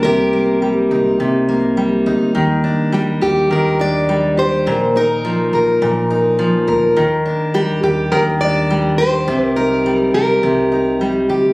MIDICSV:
0, 0, Header, 1, 4, 480
1, 0, Start_track
1, 0, Key_signature, -3, "major"
1, 0, Tempo, 576923
1, 35, Time_signature, 4, 2, 24, 8
1, 9593, End_track
2, 0, Start_track
2, 0, Title_t, "Steel-string acoustic guitar"
2, 0, Program_c, 0, 25
2, 24, Note_on_c, 0, 70, 80
2, 1438, Note_off_c, 0, 70, 0
2, 2447, Note_on_c, 0, 67, 72
2, 2510, Note_off_c, 0, 67, 0
2, 2683, Note_on_c, 0, 67, 66
2, 2928, Note_off_c, 0, 67, 0
2, 2933, Note_on_c, 0, 70, 85
2, 3149, Note_off_c, 0, 70, 0
2, 3171, Note_on_c, 0, 74, 92
2, 3648, Note_off_c, 0, 74, 0
2, 3651, Note_on_c, 0, 72, 87
2, 4131, Note_off_c, 0, 72, 0
2, 4135, Note_on_c, 0, 70, 83
2, 4607, Note_off_c, 0, 70, 0
2, 4617, Note_on_c, 0, 70, 67
2, 5295, Note_off_c, 0, 70, 0
2, 6279, Note_on_c, 0, 67, 85
2, 6510, Note_off_c, 0, 67, 0
2, 6520, Note_on_c, 0, 67, 72
2, 6754, Note_on_c, 0, 70, 85
2, 6767, Note_off_c, 0, 67, 0
2, 6820, Note_off_c, 0, 70, 0
2, 6996, Note_on_c, 0, 74, 91
2, 7469, Note_off_c, 0, 74, 0
2, 7473, Note_on_c, 0, 72, 91
2, 7864, Note_off_c, 0, 72, 0
2, 7864, Note_on_c, 0, 70, 91
2, 7954, Note_off_c, 0, 70, 0
2, 7958, Note_on_c, 0, 70, 76
2, 8405, Note_off_c, 0, 70, 0
2, 8439, Note_on_c, 0, 70, 78
2, 9126, Note_off_c, 0, 70, 0
2, 9593, End_track
3, 0, Start_track
3, 0, Title_t, "Steel-string acoustic guitar"
3, 0, Program_c, 1, 25
3, 0, Note_on_c, 1, 55, 60
3, 0, Note_on_c, 1, 58, 55
3, 38, Note_on_c, 1, 48, 80
3, 42, Note_on_c, 1, 67, 66
3, 271, Note_off_c, 1, 58, 0
3, 275, Note_on_c, 1, 58, 49
3, 512, Note_off_c, 1, 55, 0
3, 515, Note_on_c, 1, 55, 59
3, 759, Note_on_c, 1, 63, 53
3, 988, Note_off_c, 1, 48, 0
3, 998, Note_on_c, 1, 48, 70
3, 1233, Note_off_c, 1, 58, 0
3, 1236, Note_on_c, 1, 58, 53
3, 1470, Note_off_c, 1, 55, 0
3, 1474, Note_on_c, 1, 55, 62
3, 1712, Note_off_c, 1, 63, 0
3, 1715, Note_on_c, 1, 63, 51
3, 1950, Note_off_c, 1, 48, 0
3, 1953, Note_on_c, 1, 51, 78
3, 2191, Note_off_c, 1, 63, 0
3, 2195, Note_on_c, 1, 62, 52
3, 2430, Note_off_c, 1, 55, 0
3, 2433, Note_on_c, 1, 55, 57
3, 2671, Note_off_c, 1, 67, 0
3, 2674, Note_on_c, 1, 67, 57
3, 2914, Note_off_c, 1, 51, 0
3, 2917, Note_on_c, 1, 51, 68
3, 3146, Note_off_c, 1, 62, 0
3, 3156, Note_on_c, 1, 62, 52
3, 3391, Note_off_c, 1, 55, 0
3, 3401, Note_on_c, 1, 55, 64
3, 3629, Note_off_c, 1, 67, 0
3, 3639, Note_on_c, 1, 67, 53
3, 3884, Note_on_c, 1, 46, 80
3, 3925, Note_off_c, 1, 62, 0
3, 3927, Note_off_c, 1, 67, 0
3, 3928, Note_off_c, 1, 55, 0
3, 4124, Note_on_c, 1, 63, 51
3, 4148, Note_off_c, 1, 58, 0
3, 4365, Note_on_c, 1, 53, 61
3, 4390, Note_off_c, 1, 51, 0
3, 4602, Note_on_c, 1, 70, 55
3, 4832, Note_off_c, 1, 46, 0
3, 4841, Note_on_c, 1, 46, 71
3, 5076, Note_off_c, 1, 63, 0
3, 5080, Note_on_c, 1, 63, 56
3, 5304, Note_off_c, 1, 53, 0
3, 5314, Note_on_c, 1, 53, 67
3, 5550, Note_off_c, 1, 70, 0
3, 5553, Note_on_c, 1, 70, 55
3, 5795, Note_on_c, 1, 51, 78
3, 5845, Note_off_c, 1, 53, 0
3, 5849, Note_off_c, 1, 46, 0
3, 6034, Note_off_c, 1, 63, 0
3, 6037, Note_on_c, 1, 62, 52
3, 6275, Note_on_c, 1, 55, 70
3, 6516, Note_off_c, 1, 70, 0
3, 6519, Note_on_c, 1, 67, 55
3, 6750, Note_off_c, 1, 51, 0
3, 6753, Note_on_c, 1, 51, 78
3, 6991, Note_off_c, 1, 62, 0
3, 7001, Note_on_c, 1, 62, 54
3, 7238, Note_off_c, 1, 55, 0
3, 7242, Note_on_c, 1, 55, 63
3, 7478, Note_off_c, 1, 67, 0
3, 7482, Note_on_c, 1, 67, 62
3, 7715, Note_off_c, 1, 51, 0
3, 7718, Note_on_c, 1, 48, 80
3, 7768, Note_off_c, 1, 62, 0
3, 7956, Note_on_c, 1, 63, 53
3, 8199, Note_off_c, 1, 55, 0
3, 8203, Note_on_c, 1, 55, 60
3, 8438, Note_off_c, 1, 67, 0
3, 8442, Note_on_c, 1, 67, 57
3, 8669, Note_off_c, 1, 48, 0
3, 8679, Note_on_c, 1, 48, 70
3, 8915, Note_off_c, 1, 63, 0
3, 8918, Note_on_c, 1, 63, 50
3, 9156, Note_off_c, 1, 55, 0
3, 9159, Note_on_c, 1, 55, 62
3, 9394, Note_off_c, 1, 67, 0
3, 9397, Note_on_c, 1, 67, 61
3, 9593, Note_off_c, 1, 48, 0
3, 9593, Note_off_c, 1, 55, 0
3, 9593, Note_off_c, 1, 63, 0
3, 9593, Note_off_c, 1, 67, 0
3, 9593, End_track
4, 0, Start_track
4, 0, Title_t, "Upright bass"
4, 0, Program_c, 2, 32
4, 36, Note_on_c, 2, 36, 87
4, 723, Note_off_c, 2, 36, 0
4, 756, Note_on_c, 2, 36, 79
4, 977, Note_off_c, 2, 36, 0
4, 995, Note_on_c, 2, 36, 72
4, 1683, Note_off_c, 2, 36, 0
4, 1717, Note_on_c, 2, 38, 82
4, 1938, Note_off_c, 2, 38, 0
4, 1958, Note_on_c, 2, 39, 77
4, 2645, Note_off_c, 2, 39, 0
4, 2681, Note_on_c, 2, 39, 85
4, 2900, Note_off_c, 2, 39, 0
4, 2918, Note_on_c, 2, 39, 84
4, 3845, Note_off_c, 2, 39, 0
4, 3880, Note_on_c, 2, 34, 84
4, 4566, Note_off_c, 2, 34, 0
4, 4600, Note_on_c, 2, 34, 77
4, 4820, Note_off_c, 2, 34, 0
4, 4837, Note_on_c, 2, 34, 80
4, 5525, Note_off_c, 2, 34, 0
4, 5558, Note_on_c, 2, 38, 81
4, 5779, Note_off_c, 2, 38, 0
4, 5800, Note_on_c, 2, 39, 81
4, 6486, Note_off_c, 2, 39, 0
4, 6516, Note_on_c, 2, 39, 90
4, 6738, Note_off_c, 2, 39, 0
4, 6757, Note_on_c, 2, 39, 95
4, 7685, Note_off_c, 2, 39, 0
4, 7717, Note_on_c, 2, 36, 92
4, 8405, Note_off_c, 2, 36, 0
4, 8438, Note_on_c, 2, 36, 79
4, 8659, Note_off_c, 2, 36, 0
4, 8682, Note_on_c, 2, 36, 81
4, 9367, Note_off_c, 2, 36, 0
4, 9399, Note_on_c, 2, 38, 79
4, 9593, Note_off_c, 2, 38, 0
4, 9593, End_track
0, 0, End_of_file